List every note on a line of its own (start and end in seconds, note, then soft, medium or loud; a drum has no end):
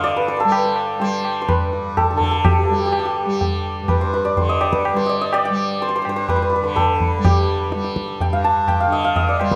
0.00 1.56 G2 medium
0.00 2.13 D3 medium
0.00 0.44 G3 medium
0.00 0.76 G4 medium
0.00 0.40 A4 medium
0.00 0.23 C5 medium
0.00 2.50 D5 loud
0.00 2.02 F5 loud
0.00 1.75 G5 loud
0.04 tabla te medium
0.17 0.34 B4 medium
0.28 0.43 C5 medium
0.28 tabla te medium
0.37 1.97 A4 loud
0.37 0.51 B4 medium
0.44 1.00 G3 medium
0.52 0.70 B4 loud
0.52 tabla na loud
0.64 1.01 C5 medium
0.76 tabla na medium
1.00 2.69 G3 medium
1.00 1.41 C5 loud
1.00 tabla tin medium
1.25 tabla na medium
1.42 1.54 C5 medium
1.48 3.88 B4 loud
1.48 tabla na medium
1.48 tabla ge medium
1.56 3.82 G2 medium
1.73 tabla te medium
1.97 2.04 A4 medium
1.97 tabla na medium
1.97 tabla ge medium
2.04 2.10 A4 medium
2.11 4.37 D3 medium
2.11 2.17 A4 medium
2.17 2.23 A4 medium
2.17 tabla ge medium
2.24 2.31 A4 medium
2.31 5.24 A4 medium
2.45 2.51 G4 medium
2.45 tabla na loud
2.45 tabla ge loud
2.52 2.58 G4 medium
2.59 2.65 G4 medium
2.65 3.25 G3 medium
2.65 2.72 G4 soft
2.72 2.78 G4 medium
2.78 2.85 G4 medium
2.85 2.92 G4 medium
2.92 2.99 G4 medium
2.92 tabla na loud
2.99 3.05 G4 medium
3.05 6.19 G4 medium
3.25 4.93 G3 medium
3.41 tabla tin medium
3.41 tabla ge medium
3.82 6.05 G2 medium
3.88 4.07 B4 medium
3.88 tabla na medium
3.88 tabla ge medium
4.01 4.20 C5 medium
4.13 4.43 B4 medium
4.13 tabla te medium
4.25 4.55 D5 medium
4.37 6.62 D3 medium
4.37 4.78 C5 medium
4.37 tabla tin medium
4.37 tabla ge medium
4.49 4.67 D#5 medium
4.61 5.09 D5 medium
4.61 tabla na medium
4.72 5.03 B4 medium
4.72 tabla ke medium
4.85 tabla na medium
4.93 5.50 G3 medium
4.93 5.82 C5 medium
5.06 5.27 D5 medium
5.06 5.15 D#5 medium
5.21 5.40 D#5 loud
5.33 7.80 D5 loud
5.33 tabla na medium
5.45 7.52 G5 loud
5.50 7.19 G3 medium
5.56 tabla na medium
5.80 5.88 C5 loud
5.80 tabla tin medium
5.89 5.95 C5 medium
5.96 6.02 C5 medium
6.02 8.30 G2 medium
6.02 6.09 C5 medium
6.02 tabla na medium
6.09 6.16 C5 loud
6.16 6.35 C5 medium
6.29 6.36 B4 loud
6.29 tabla na medium
6.29 tabla ge medium
6.36 6.42 B4 medium
6.42 6.49 B4 medium
6.50 6.55 B4 medium
6.50 tabla te medium
6.56 6.63 B4 medium
6.62 8.86 D3 medium
6.62 9.38 B4 medium
6.76 9.55 A4 medium
6.76 tabla na loud
6.76 tabla ge medium
7.00 tabla ge medium
7.19 7.74 G3 medium
7.25 9.55 G4 loud
7.25 tabla na loud
7.25 tabla ge loud
7.72 9.41 G3 medium
7.72 tabla te loud
7.84 tabla te medium
7.96 tabla ke medium
8.08 tabla te medium
8.20 8.68 G5 loud
8.20 tabla tin medium
8.20 tabla ge medium
8.30 9.55 G2 medium
8.30 8.80 F5 medium
8.44 9.55 A5 loud
8.68 9.55 G5 loud
8.68 tabla na medium
8.68 tabla ge medium
8.80 9.04 F5 loud
8.86 9.55 D3 medium
8.92 9.16 D#5 medium
9.04 9.55 F5 loud
9.16 9.35 D#5 loud
9.16 tabla tin medium
9.16 tabla ge medium
9.29 9.55 D5 medium
9.40 9.55 G3 medium
9.40 9.55 C5 loud
9.40 tabla na medium
9.52 9.55 B4 medium
9.52 tabla ke medium